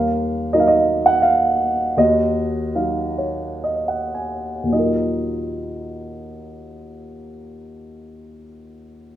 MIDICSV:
0, 0, Header, 1, 2, 480
1, 0, Start_track
1, 0, Key_signature, -6, "minor"
1, 0, Tempo, 685714
1, 864, Tempo, 734394
1, 1344, Time_signature, 3, 2, 24, 8
1, 1344, Tempo, 787402
1, 1824, Tempo, 883652
1, 2304, Tempo, 1073345
1, 2784, Tempo, 1181102
1, 3264, Tempo, 1140684
1, 4639, End_track
2, 0, Start_track
2, 0, Title_t, "Grand piano"
2, 0, Program_c, 0, 0
2, 0, Note_on_c, 0, 39, 50
2, 0, Note_on_c, 0, 70, 50
2, 0, Note_on_c, 0, 77, 68
2, 34, Control_c, 0, 64, 127
2, 344, Note_off_c, 0, 77, 0
2, 372, Note_on_c, 0, 75, 65
2, 377, Note_on_c, 0, 54, 38
2, 379, Note_on_c, 0, 58, 36
2, 379, Note_on_c, 0, 63, 42
2, 418, Note_on_c, 0, 77, 59
2, 426, Note_off_c, 0, 75, 0
2, 472, Note_off_c, 0, 77, 0
2, 473, Note_on_c, 0, 75, 63
2, 590, Note_off_c, 0, 70, 0
2, 741, Note_on_c, 0, 78, 78
2, 746, Note_off_c, 0, 75, 0
2, 855, Note_on_c, 0, 77, 73
2, 868, Note_off_c, 0, 78, 0
2, 1316, Note_off_c, 0, 39, 0
2, 1317, Note_off_c, 0, 54, 0
2, 1319, Note_off_c, 0, 58, 0
2, 1319, Note_off_c, 0, 63, 0
2, 1345, Note_on_c, 0, 39, 52
2, 1351, Control_c, 0, 64, 0
2, 1351, Note_on_c, 0, 75, 69
2, 1354, Note_off_c, 0, 77, 0
2, 1360, Note_on_c, 0, 66, 47
2, 1458, Control_c, 0, 64, 127
2, 1821, Note_on_c, 0, 54, 40
2, 1822, Note_on_c, 0, 63, 33
2, 1824, Note_on_c, 0, 77, 43
2, 2055, Note_on_c, 0, 73, 44
2, 2287, Note_off_c, 0, 73, 0
2, 2295, Note_off_c, 0, 75, 0
2, 2303, Note_on_c, 0, 75, 41
2, 2405, Note_off_c, 0, 75, 0
2, 2412, Note_on_c, 0, 78, 38
2, 2518, Note_off_c, 0, 66, 0
2, 2521, Note_off_c, 0, 78, 0
2, 2529, Note_on_c, 0, 80, 39
2, 2742, Note_off_c, 0, 39, 0
2, 2749, Note_on_c, 0, 39, 31
2, 2765, Note_off_c, 0, 54, 0
2, 2765, Note_on_c, 0, 46, 27
2, 2766, Note_off_c, 0, 63, 0
2, 2766, Note_off_c, 0, 77, 0
2, 2766, Note_off_c, 0, 80, 0
2, 2776, Note_on_c, 0, 54, 27
2, 2789, Control_c, 0, 64, 0
2, 2789, Note_on_c, 0, 63, 29
2, 2789, Note_on_c, 0, 75, 44
2, 2802, Note_on_c, 0, 65, 29
2, 2814, Note_on_c, 0, 70, 33
2, 2860, Control_c, 0, 64, 127
2, 4285, Note_off_c, 0, 39, 0
2, 4300, Note_off_c, 0, 46, 0
2, 4311, Note_off_c, 0, 54, 0
2, 4323, Note_off_c, 0, 63, 0
2, 4323, Note_off_c, 0, 75, 0
2, 4337, Note_off_c, 0, 65, 0
2, 4349, Note_off_c, 0, 70, 0
2, 4639, End_track
0, 0, End_of_file